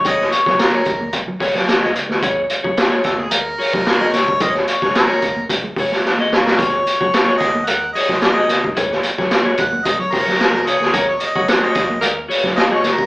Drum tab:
HH |x-x-x-x-x-o-x-x-|x-x-x-x-x-o-x-x-|x-x-x-x-x-o-----|x-x-x-x-x-o-x-x-|
SD |-o-oo------ooo-o|----o-o----oo-o-|-o-oo------oo-oo|----o-o----oo-o-|
BD |o--o--o-o-o-----|o--o--o----o---o|o--o--o-o-o-----|o--o--o----o---o|

HH |x-x-x-x-x-o-x-x-|x-x-x-x-x-o-x-x-|
SD |-o-oo------oo--o|----o-o----oo-o-|
BD |o--o--o-o-o-----|o--o--o----o---o|